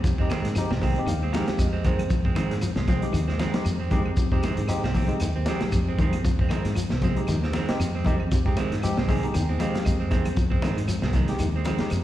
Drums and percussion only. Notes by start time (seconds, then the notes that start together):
0.04 kick, closed hi-hat, shekere
0.18 kick
0.30 snare, closed hi-hat, high conga, claves, shekere
0.45 snare, closed hi-hat
0.55 closed hi-hat, claves, shekere
0.71 snare, high conga
0.82 kick, open hi-hat, high conga, low conga, shekere
0.96 closed hi-hat
1.06 closed hi-hat, claves, shekere
1.34 snare, closed hi-hat, high conga, shekere
1.48 snare, closed hi-hat
1.59 kick, closed hi-hat, claves, shekere
1.84 kick, closed hi-hat, high conga, low conga, shekere
1.99 closed hi-hat, claves
2.10 kick, closed hi-hat, shekere
2.25 kick
2.35 closed hi-hat, high conga, claves, shekere
2.51 snare, closed hi-hat
2.61 closed hi-hat, claves, shekere
2.76 snare, high conga
2.87 kick, closed hi-hat, high conga, low conga, shekere
3.02 closed hi-hat
3.13 closed hi-hat, claves, shekere
3.28 snare
3.39 snare, closed hi-hat, high conga, shekere
3.54 snare, closed hi-hat, low conga
3.65 closed hi-hat, claves, shekere
3.91 kick, closed hi-hat, high conga, low conga, shekere
4.06 claves
4.17 kick, closed hi-hat, shekere
4.32 kick
4.43 closed hi-hat, high conga, claves, shekere
4.57 closed hi-hat
4.68 closed hi-hat, claves, shekere
4.84 snare, high conga
4.94 kick, open hi-hat, high conga, low conga, shekere
5.09 closed hi-hat
5.20 closed hi-hat, claves, shekere
5.46 snare, closed hi-hat, high conga, shekere
5.61 snare, closed hi-hat, low conga
5.72 kick, closed hi-hat, claves, shekere
5.98 kick, closed hi-hat, low conga, shekere
6.13 closed hi-hat, high conga, claves
6.25 kick, closed hi-hat, shekere
6.39 kick
6.49 closed hi-hat, high conga, claves, shekere
6.65 snare, closed hi-hat
6.75 closed hi-hat, claves, shekere
6.90 snare, high conga
7.01 kick, closed hi-hat, high conga, low conga, shekere
7.16 closed hi-hat
7.27 snare, closed hi-hat, high conga, claves, shekere
7.43 snare
7.53 snare, closed hi-hat, high conga, shekere
7.69 snare, closed hi-hat
7.80 closed hi-hat, claves, shekere
8.05 kick, closed hi-hat, high conga, low conga, shekere
8.20 claves
8.31 kick, closed hi-hat, shekere
8.46 kick
8.57 closed hi-hat, high conga, claves, shekere
8.72 snare, closed hi-hat
8.82 closed hi-hat, claves, shekere
8.97 snare, high conga
9.08 kick, open hi-hat, high conga, low conga, shekere
9.23 closed hi-hat
9.34 closed hi-hat, high conga, claves, shekere
9.60 closed hi-hat, high conga, shekere
9.75 snare, closed hi-hat, low conga
9.85 kick, closed hi-hat, claves, shekere
10.11 kick, closed hi-hat, high conga, low conga, shekere
10.25 closed hi-hat, high conga, claves
10.36 kick, closed hi-hat, shekere
10.52 kick
10.62 snare, closed hi-hat, high conga, claves, shekere
10.78 closed hi-hat
10.88 closed hi-hat, claves, shekere
11.02 snare, high conga
11.13 kick, snare, closed hi-hat, high conga, low conga, shekere
11.28 snare, closed hi-hat
11.38 closed hi-hat, claves, shekere
11.64 closed hi-hat, high conga, shekere
11.78 snare, closed hi-hat
11.90 closed hi-hat, claves, shekere